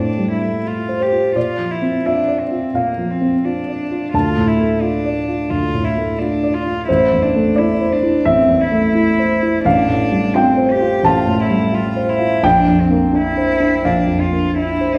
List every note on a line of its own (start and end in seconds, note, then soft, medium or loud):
0.00 1.38 A2 soft
0.00 0.19 G3 soft
0.00 0.42 A3 soft
0.00 0.31 D4 soft
0.00 0.66 F4 soft
0.00 0.89 C5 soft
0.00 0.62 G5 medium
0.19 0.56 G3 soft
0.32 0.68 E4 soft
0.42 0.79 A3 soft
0.66 1.03 F4 soft
0.89 0.99 C5 soft
1.00 1.36 G4 soft
1.00 1.33 C5 soft
1.12 1.36 F4 soft
1.35 2.70 A#2 soft
1.35 1.72 F4 medium
1.35 2.01 D5 medium
1.58 1.96 F3 soft
1.71 2.07 E4 soft
1.82 2.19 C4 soft
2.05 2.42 D4 soft
2.05 2.43 F4 soft
2.05 2.71 E5 soft
2.28 2.65 D5 soft
2.40 2.78 C4 soft
2.51 2.88 F4 soft
2.74 4.09 A#2 soft
2.74 3.12 A#3 soft
2.74 4.10 F5 medium
2.98 3.35 F3 soft
3.10 3.46 C4 soft
3.21 3.58 C4 soft
3.44 4.13 D4 soft
3.44 3.82 F4 soft
3.67 4.04 D5 soft
3.91 4.14 F4 soft
4.13 5.46 D2 soft
4.13 4.49 F4 medium
4.13 6.16 A5 medium
4.37 4.73 A2 soft
4.47 4.83 E4 soft
4.60 4.96 A3 soft
4.81 5.51 D4 medium
4.81 5.18 F4 soft
5.05 5.41 D5 soft
5.28 5.64 F4 soft
5.50 6.84 D2 soft
5.50 5.86 F4 medium
5.74 6.10 A2 soft
5.84 6.20 E4 soft
5.98 6.34 A3 soft
6.19 6.55 D4 medium
6.19 6.57 F4 soft
6.43 6.79 D5 soft
6.53 6.87 F4 medium
6.66 6.89 F4 soft
6.88 8.22 A1 medium
6.88 7.24 E4 medium
6.88 7.53 C5 medium
7.13 7.48 E2 soft
7.22 7.59 D4 medium
7.36 7.71 A3 soft
7.56 7.93 E4 medium
7.56 7.94 E4 soft
7.56 8.21 D5 medium
7.81 8.17 C5 soft
7.92 8.27 D4 medium
8.03 8.40 E4 soft
8.25 9.61 A1 soft
8.25 8.62 C4 medium
8.25 9.61 E5 medium
8.49 8.86 E2 soft
8.60 9.64 E4 medium
8.72 9.09 A3 soft
8.95 9.32 E4 soft
9.19 9.56 C5 soft
9.43 9.65 E4 soft
9.65 11.01 A1 medium
9.65 10.36 D4 medium
9.65 10.31 F5 medium
9.88 10.25 A2 soft
10.11 10.49 G3 soft
10.34 10.72 C4 medium
10.34 10.72 F4 medium
10.34 11.01 G5 medium
10.57 10.95 C5 soft
10.71 11.07 G4 medium
10.80 11.18 F4 soft
11.03 12.40 A1 soft
11.03 11.43 F4 medium
11.03 12.40 A5 medium
11.27 11.64 A2 soft
11.41 11.76 E4 medium
11.50 11.88 G3 soft
11.72 12.11 F4 soft
11.72 12.11 F4 medium
11.96 12.34 C5 soft
12.09 12.47 E4 medium
12.18 12.43 F4 soft
12.43 13.80 A#1 medium
12.43 12.81 D4 medium
12.43 13.80 G5 medium
12.68 13.05 F2 soft
12.80 13.16 C4 medium
12.90 13.28 A#3 soft
13.13 13.51 D4 soft
13.13 13.87 E4 medium
13.37 13.75 C5 soft
13.60 13.98 D4 soft
13.85 14.98 A#1 soft
13.85 14.22 D4 medium
13.85 14.91 F5 medium
14.07 14.46 F2 soft
14.20 14.57 F4 medium
14.31 14.71 A#3 soft
14.56 14.97 D4 soft
14.56 14.98 E4 medium
14.81 14.93 C5 soft
14.95 14.98 C5 medium